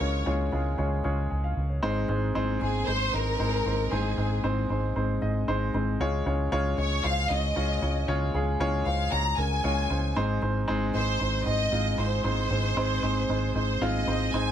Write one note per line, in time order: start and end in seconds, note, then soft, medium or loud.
0.00 0.22 C#2 medium
0.00 0.48 C#3 medium
0.00 0.26 G#3 medium
0.00 0.26 C#4 medium
0.00 0.26 F4 medium
0.00 1.85 A#4 medium
0.00 1.83 C5 loud
0.00 0.26 C#5 medium
0.00 0.27 C#5 medium
0.00 1.85 D#5 medium
0.26 0.48 C#2 medium
0.26 0.47 G#3 medium
0.26 0.47 C#4 medium
0.26 0.48 F4 medium
0.26 0.48 C#5 medium
0.52 0.74 C#2 medium
0.52 0.74 G#3 medium
0.52 0.74 C#4 medium
0.52 0.74 F4 medium
0.52 0.74 G#4 medium
0.78 1.00 C#2 medium
0.78 1.00 G#3 medium
0.78 1.00 C#4 medium
0.78 1.00 F4 medium
0.78 1.00 C#5 medium
1.04 1.26 C#2 medium
1.04 1.26 G#3 medium
1.04 1.26 C#4 medium
1.04 1.26 F4 medium
1.04 1.26 C#5 medium
1.30 1.52 C#2 medium
1.30 1.43 G#5 medium
1.44 1.69 F5 medium
1.57 1.78 C#2 medium
1.69 1.94 C#5 soft
1.82 2.04 G#1 medium
1.82 2.57 G#2 medium
1.82 2.04 G#3 loud
1.82 2.04 C4 medium
1.82 2.04 D#4 medium
1.82 2.04 C5 loud
2.08 2.30 G#1 medium
2.08 2.30 G#3 medium
2.08 2.30 C4 medium
2.08 2.30 D#4 medium
2.08 2.30 C5 medium
2.35 2.56 G#1 medium
2.35 2.56 G#3 loud
2.35 2.56 C4 medium
2.35 2.56 D#4 medium
2.35 2.56 C5 loud
2.61 2.82 G#1 medium
2.61 2.82 G#3 medium
2.61 2.83 C4 medium
2.61 2.82 D#4 medium
2.61 2.86 G#4 medium
2.61 2.83 C5 medium
2.87 3.09 G#1 medium
2.87 3.09 G#3 medium
2.87 3.09 C4 medium
2.87 3.09 D#4 medium
2.87 3.09 C5 medium
2.87 3.13 C5 medium
3.13 3.35 G#1 medium
3.13 3.34 G#3 medium
3.13 3.34 C4 medium
3.13 3.34 D#4 medium
3.13 3.92 A#4 medium
3.13 3.35 C5 medium
3.39 3.61 G#1 medium
3.39 3.60 G#3 medium
3.39 3.60 C4 medium
3.39 3.60 D#4 medium
3.39 3.61 C5 medium
3.65 3.87 G#1 medium
3.65 3.87 G#3 medium
3.65 3.87 C4 soft
3.65 3.87 D#4 medium
3.65 3.87 C5 medium
3.92 4.13 G#1 medium
3.92 4.66 G#2 medium
3.92 4.13 G#3 medium
3.92 4.13 C4 medium
3.92 4.13 D#4 medium
3.92 4.44 G#4 medium
3.92 4.13 C5 medium
4.17 4.39 G#1 medium
4.17 4.39 G#3 medium
4.17 4.39 C4 medium
4.17 4.39 D#4 medium
4.17 4.39 C5 medium
4.44 4.65 G#1 medium
4.44 4.65 G#3 medium
4.44 4.65 C4 medium
4.44 4.65 D#4 medium
4.44 4.65 C5 medium
4.70 4.91 G#1 medium
4.70 4.91 G#3 medium
4.70 4.91 C4 medium
4.70 4.91 D#4 medium
4.70 4.91 C5 medium
4.96 5.17 G#1 medium
4.96 5.17 G#3 medium
4.96 5.17 C4 medium
4.96 5.17 D#4 medium
4.96 5.17 C5 medium
5.22 5.43 G#1 medium
5.22 5.43 G#3 medium
5.22 5.43 C4 medium
5.22 5.43 D#4 medium
5.22 5.43 D#5 medium
5.48 5.69 G#1 medium
5.48 5.69 G#3 medium
5.48 5.69 C4 medium
5.48 5.69 D#4 medium
5.48 5.69 C5 loud
5.74 5.95 G#1 medium
5.74 5.95 G#3 medium
5.74 5.95 C4 medium
5.74 5.95 D#4 medium
5.74 5.95 C5 medium
6.00 6.21 C#2 medium
6.00 6.74 C#3 medium
6.00 6.21 G#3 medium
6.00 6.21 C#4 medium
6.00 6.21 F4 medium
6.00 6.21 C#5 loud
6.26 6.47 C#2 medium
6.26 6.47 G#3 medium
6.26 6.47 C#4 medium
6.26 6.47 F4 medium
6.26 6.47 C#5 medium
6.52 6.73 C#2 medium
6.52 6.73 G#3 medium
6.52 6.73 C#4 medium
6.52 6.73 F4 medium
6.52 6.73 C#5 loud
6.78 6.99 C#2 medium
6.78 6.99 G#3 medium
6.78 6.99 C#4 medium
6.78 6.99 F4 soft
6.78 6.99 C#5 medium
6.78 7.03 C#5 medium
7.04 7.25 C#2 medium
7.04 7.25 G#3 medium
7.04 7.25 C#4 medium
7.04 7.25 F4 medium
7.04 7.25 C5 medium
7.04 7.30 F5 medium
7.30 7.51 C#2 medium
7.30 7.51 G#3 medium
7.30 7.51 C#4 medium
7.30 7.51 F4 soft
7.30 7.51 C#5 medium
7.30 8.08 D#5 medium
7.56 7.77 C#2 medium
7.56 7.77 G#3 medium
7.56 7.77 C#4 medium
7.56 7.77 F4 medium
7.56 7.77 C#5 medium
7.82 8.03 C#2 medium
7.82 8.03 G#3 medium
7.82 8.03 C#4 medium
7.82 8.03 F4 medium
7.82 8.03 C#5 medium
8.08 8.29 C#2 medium
8.08 8.82 C#3 medium
8.08 8.29 G#3 medium
8.08 8.29 C#4 medium
8.08 8.29 F4 medium
8.08 8.29 C#5 loud
8.34 8.55 C#2 medium
8.34 8.55 G#3 medium
8.34 8.55 C#4 medium
8.34 8.56 F4 medium
8.34 8.56 G#4 medium
8.60 8.81 C#2 medium
8.60 8.81 G#3 medium
8.60 8.81 C#4 medium
8.60 8.81 F4 medium
8.60 8.82 C#5 loud
8.86 9.07 C#2 medium
8.86 9.07 G#3 medium
8.86 9.07 C#4 soft
8.86 9.08 F4 medium
8.86 9.07 C5 medium
8.86 9.11 F5 medium
9.12 9.33 C#2 medium
9.12 9.33 G#3 medium
9.12 9.33 C#4 medium
9.12 9.33 F4 medium
9.12 9.33 C#5 medium
9.12 9.38 A#5 medium
9.37 9.59 C#2 medium
9.37 9.59 G#3 medium
9.37 9.60 C#4 medium
9.37 9.59 F4 medium
9.37 9.59 A#4 medium
9.37 10.16 G#5 medium
9.64 9.85 C#2 medium
9.64 9.85 G#3 medium
9.64 9.85 C#4 medium
9.64 9.85 F4 medium
9.64 9.85 C#5 medium
9.90 10.12 C#2 medium
9.90 10.11 G#3 medium
9.90 10.11 C#4 medium
9.90 10.12 F4 medium
9.90 10.12 C5 medium
10.16 10.38 G#1 medium
10.16 10.91 G#2 medium
10.16 10.38 G#3 medium
10.16 10.38 C4 medium
10.16 10.38 D#4 medium
10.16 10.38 C5 loud
10.42 10.64 G#1 medium
10.42 10.63 G#3 medium
10.42 10.63 C4 medium
10.42 10.64 D#4 medium
10.42 10.64 C5 medium
10.68 10.90 G#1 medium
10.68 10.89 G#3 loud
10.68 10.89 C4 medium
10.68 10.89 D#4 medium
10.68 10.89 C5 loud
10.94 11.16 G#1 medium
10.94 11.15 G#3 medium
10.94 11.15 C4 medium
10.94 11.15 D#4 medium
10.94 11.15 C5 medium
10.94 11.43 C5 medium
11.20 11.42 G#1 medium
11.20 11.41 G#3 medium
11.20 11.41 C4 medium
11.20 11.41 D#4 medium
11.20 11.41 C5 medium
11.46 11.68 G#1 medium
11.46 11.67 G#3 medium
11.46 11.67 C4 medium
11.46 11.67 D#4 medium
11.46 11.67 C5 medium
11.46 11.99 D#5 medium
11.72 11.94 G#1 medium
11.72 11.93 G#3 medium
11.72 11.94 C4 medium
11.72 11.94 D#4 medium
11.72 11.94 F4 medium
11.98 12.20 G#1 medium
11.98 12.19 G#3 medium
11.98 12.20 C4 medium
11.98 12.20 D#4 medium
11.98 12.20 C5 medium
11.98 13.56 C5 medium
12.24 12.46 G#1 medium
12.24 12.99 G#2 medium
12.24 12.46 G#3 medium
12.24 12.46 C4 medium
12.24 12.46 D#4 medium
12.24 12.46 C5 medium
12.50 12.72 G#1 medium
12.50 12.72 G#3 medium
12.50 12.72 C4 medium
12.50 12.72 D#4 medium
12.50 12.72 C5 medium
12.76 12.98 G#1 medium
12.76 12.98 G#3 medium
12.76 12.98 C4 medium
12.76 12.98 D#4 medium
12.76 12.98 C5 loud
13.02 13.24 G#1 medium
13.02 13.24 G#3 medium
13.02 13.24 C4 medium
13.02 13.24 D#4 medium
13.02 13.24 C5 medium
13.29 13.50 G#1 medium
13.29 13.50 G#3 medium
13.29 13.51 C4 medium
13.29 13.51 D#4 medium
13.29 13.51 C5 medium
13.55 13.76 G#1 medium
13.55 13.76 G#3 medium
13.55 13.76 C4 medium
13.55 13.76 D#4 medium
13.55 13.76 C5 medium
13.55 13.80 C5 medium
13.81 14.02 G#1 medium
13.81 14.03 G#3 medium
13.81 14.03 C4 medium
13.81 14.03 D#4 medium
13.81 14.03 F4 loud
13.81 14.30 D#5 medium
13.81 14.34 D#5 medium
14.07 14.28 G#1 medium
14.07 14.29 G#3 medium
14.07 14.29 C4 medium
14.07 14.29 D#4 medium
14.07 14.29 C5 medium
14.33 14.52 G#1 medium
14.33 14.52 G#2 medium
14.33 14.52 G#3 medium
14.33 14.52 C4 medium
14.33 14.52 D#4 medium
14.33 14.52 C5 medium
14.33 14.52 G#5 medium